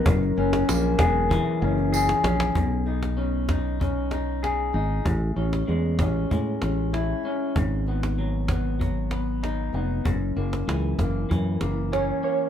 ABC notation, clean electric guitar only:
X:1
M:4/4
L:1/8
Q:1/4=96
K:B
V:1 name="Clean electric guitar"
F,, C A, G E, C G C | B,, D C D C D G D | =A,, C G, C G, C E C | G,, B, F, B, F, B, D B, |
F,, A, E, A, E, A, C A, |]